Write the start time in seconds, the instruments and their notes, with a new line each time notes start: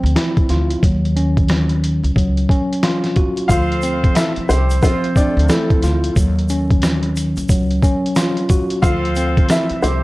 Already playing: tine electric piano F3 C4
0.03 upright bass D2, closed hi-hat
0.16 tine electric piano E4, cross-stick, snare, closed hi-hat
0.37 kick, closed hi-hat
0.49 upright bass D2, tine electric piano F4, snare, closed hi-hat
0.70 closed hi-hat
0.83 upright bass D#2, tine electric piano F#3, kick, closed hi-hat
1.05 closed hi-hat
1.16 tine electric piano C#4, closed hi-hat
1.37 kick, closed hi-hat
1.48 cross-stick, snare, closed hi-hat
1.69 closed hi-hat
1.84 closed hi-hat
2.03 upright bass C#2, closed hi-hat
2.16 upright bass C#2, tine electric piano F#3, kick, closed hi-hat
2.37 closed hi-hat
2.49 tine electric piano C#4, kick, closed hi-hat
2.73 closed hi-hat
2.83 tine electric piano F4, cross-stick, snare, closed hi-hat
3.04 snare, closed hi-hat
3.16 tine electric piano F#4, kick, closed hi-hat
3.37 closed hi-hat
3.48 upright bass D2, tine electric piano F3, horn section C4 F4 A4 C5, upright piano F4 F5, kick, closed hi-hat, shaker
3.72 closed hi-hat
3.82 tine electric piano C4, closed hi-hat, shaker
4.04 kick, closed hi-hat
4.15 horn section A3 F4 A4, upright piano E4 E5, cross-stick, snare, closed hi-hat, shaker
4.36 muted upright bass stroke, closed hi-hat
4.49 upright bass C2, horn section G3 C4 E4 G4, upright piano C4 C5, closed hi-hat, shaker
4.70 closed hi-hat, shaker
4.82 horn section F3 A3 C4 F4, tine electric piano F3, upright piano C4 C5, kick, closed hi-hat, shaker
5.04 closed hi-hat
5.16 horn section A3 F4 A4, tine electric piano C4, upright piano D4 D5, kick, closed hi-hat, shaker
5.37 upright bass D2, closed hi-hat
5.49 upright piano A3 A4, tine electric piano E4, cross-stick, snare, closed hi-hat, shaker
5.70 kick, closed hi-hat
5.82 upright bass D2, tine electric piano F4, snare, closed hi-hat, shaker
6.04 closed hi-hat
6.16 upright bass D#2, tine electric piano F#3, kick, closed hi-hat, shaker
6.39 closed hi-hat
6.49 tine electric piano C#4, closed hi-hat, shaker
6.71 kick, closed hi-hat
6.82 cross-stick, snare, closed hi-hat, shaker
7.03 closed hi-hat
7.16 closed hi-hat, shaker
7.37 upright bass C#2, closed hi-hat, shaker
7.49 upright bass C#2, tine electric piano F#3, kick, closed hi-hat, shaker
7.71 closed hi-hat
7.82 tine electric piano C#4, kick, closed hi-hat, shaker
8.06 closed hi-hat
8.16 tine electric piano F4, cross-stick, snare, closed hi-hat, shaker
8.37 closed hi-hat
8.49 tine electric piano F#4, kick, closed hi-hat, shaker
8.70 closed hi-hat
8.82 upright bass D2, tine electric piano F3, horn section C4 F4 A4 C5, upright piano F4 F5, kick, closed hi-hat, shaker
9.05 closed hi-hat
9.16 tine electric piano C4, closed hi-hat, shaker
9.37 kick, closed hi-hat
9.49 horn section A3 F4 A4, upright piano E4 E5, cross-stick, snare, closed hi-hat, shaker
9.69 muted upright bass stroke, closed hi-hat
9.82 upright bass C2, horn section G3 C4 E4 G4, upright piano C4 C5, closed hi-hat, shaker